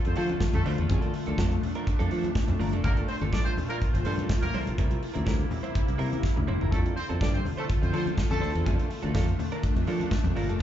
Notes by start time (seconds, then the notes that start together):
Already playing: D3 A3 F4
0.04 F2 C4 C5, muted clean electric guitar stroke, closed hi-hat
0.16 F3 A3 C4 D4 F4 A4 C5, open hi-hat, muted conga
0.29 A3 D4 F4 A4, closed hi-hat, high conga
0.41 muted clean electric guitar stroke, kick, snare
0.53 F2 A3 A4, muted clean electric guitar stroke, closed hi-hat, high conga, low conga
0.66 D2 A3 D4 F4 C5, open hi-hat
0.78 E2 A3 D4 F4 A4, closed hi-hat
0.89 F2 A#2 F3 A#3 D4 A4, kick, closed hi-hat, muted conga, low conga
1.02 closed hi-hat
1.14 muted clean electric guitar stroke, open hi-hat, muted conga
1.26 D2 F3 A#3 D4 A4, closed hi-hat, high conga
1.38 F2 F3 A#3 D4 A4, kick, snare, muted conga
1.51 muted clean electric guitar stroke, closed hi-hat
1.62 muted clean electric guitar stroke, open hi-hat, high conga, low conga
1.75 F3 A#3 D4 A#4, closed hi-hat
1.87 muted clean electric guitar stroke, kick, closed hi-hat, muted conga
1.99 F2 F3 A#3 D4 A4, closed hi-hat
2.10 F3 A#3 D4 A4, open hi-hat, muted conga
2.24 muted clean electric guitar stroke, closed hi-hat, high conga
2.35 muted clean electric guitar stroke, kick, snare
2.48 F2, muted clean electric guitar stroke, closed hi-hat, high conga, low conga
2.59 G1 A#2 F3 A#3 D4 F4 A#4, open hi-hat
2.73 F1 F3 A#3 D4 A4, closed hi-hat
2.84 G1 F3 A#3 D4 A4 A#4, kick, closed hi-hat, muted conga, low conga
2.97 closed hi-hat
3.07 C4 C5, open hi-hat
3.21 G1 F3 A#3 D4 A4, closed hi-hat, high conga
3.32 A#1 F3 A#3 D4 A4 D5, kick, snare
3.44 C4 C5, muted clean electric guitar stroke, closed hi-hat
3.57 muted clean electric guitar stroke, open hi-hat, muted conga, high conga, low conga
3.68 F3 A#3 D4 A#4, closed hi-hat
3.80 muted clean electric guitar stroke, kick, closed hi-hat, muted conga
3.93 G1 C4 C5, muted clean electric guitar stroke, closed hi-hat
4.05 G2 F3 A#3 C4 D4 A4 C5, open hi-hat, muted conga
4.18 F3 A#3 D4 A4, closed hi-hat, high conga
4.29 muted clean electric guitar stroke, kick, snare
4.42 A#1 A#3 A#4, muted clean electric guitar stroke, closed hi-hat, high conga, low conga
4.54 C2 C3 G3 A#3 C4 E4 C5, open hi-hat, muted conga
4.67 A#1 G3 C4 E4 A#4, closed hi-hat
4.78 C2 G3 C4 E4 A#4, kick, closed hi-hat, muted conga, low conga
4.91 closed hi-hat
5.01 muted clean electric guitar stroke, open hi-hat, muted conga
5.14 D2 G3 C4 E4 A#4, closed hi-hat, high conga
5.25 D2 G3 C4 E4 A#4, kick, snare
5.38 muted clean electric guitar stroke, closed hi-hat
5.50 muted clean electric guitar stroke, open hi-hat, muted conga, high conga, low conga
5.63 G3 C4 E4 C5, closed hi-hat
5.74 muted clean electric guitar stroke, kick, closed hi-hat, muted conga
5.86 C2, muted clean electric guitar stroke, closed hi-hat
5.98 C3 G3 C4 E4 A#4, open hi-hat
6.11 G3 C4 E4 A#4, closed hi-hat, high conga
6.23 muted clean electric guitar stroke, kick, snare
6.36 D2, muted clean electric guitar stroke, high conga, low conga
6.47 F1 G3 C4 E4 C5, mid tom
6.61 G1 G3 C4 E4 A#4, floor tom
6.71 F2 D3 F3 A3 C4 D4 F4 A4, kick, closed hi-hat, muted conga, low conga
6.86 closed hi-hat
6.96 C4 C5, muted clean electric guitar stroke, open hi-hat, muted conga
7.09 F2 F3 C4 D4 A4, closed hi-hat, high conga
7.21 G2 F3 C4 D4 A4 D5, kick, snare, muted conga
7.33 C4 C5, muted clean electric guitar stroke, closed hi-hat
7.45 muted clean electric guitar stroke, open hi-hat, muted conga, high conga, low conga
7.57 F3 A3 C4 D4 A4 C5, closed hi-hat
7.69 muted clean electric guitar stroke, kick, closed hi-hat
7.82 F2 C4 C5, muted clean electric guitar stroke, closed hi-hat
7.93 F3 C4 D4 A4 C5, open hi-hat
8.05 F3 C4 D4 A4, closed hi-hat, high conga
8.17 muted clean electric guitar stroke, kick, snare, muted conga
8.30 F2 A3 A4, muted clean electric guitar stroke, closed hi-hat, high conga, low conga
8.40 D2 F3 C4 D4 C5, open hi-hat, muted conga
8.53 E2 F3 C4 D4 A4, closed hi-hat
8.64 F2 A#2 F3 A#3 D4 A4, kick, closed hi-hat, muted conga, low conga
8.79 closed hi-hat
8.89 muted clean electric guitar stroke, open hi-hat, muted conga
9.03 D2 F3 A#3 D4 A4, closed hi-hat, high conga
9.14 F2 F3 A#3 D4 A4, kick, snare
9.28 muted clean electric guitar stroke, closed hi-hat
9.39 muted clean electric guitar stroke, open hi-hat, muted conga, high conga, low conga
9.52 F3 A#3 D4 A#4, closed hi-hat
9.63 muted clean electric guitar stroke, kick, closed hi-hat
9.76 F2, muted clean electric guitar stroke, closed hi-hat
9.87 F3 A#3 D4 A4, open hi-hat, muted conga
10.00 F3 A#3 D4 A4, closed hi-hat, high conga
10.11 muted clean electric guitar stroke, kick, snare, muted conga
10.24 F2, muted clean electric guitar stroke, closed hi-hat, high conga, low conga
10.35 G1 F3 A#3 D4 F4 A#4, open hi-hat, muted conga
10.49 F1 F3 A#3 D4 A4, closed hi-hat
10.59 low conga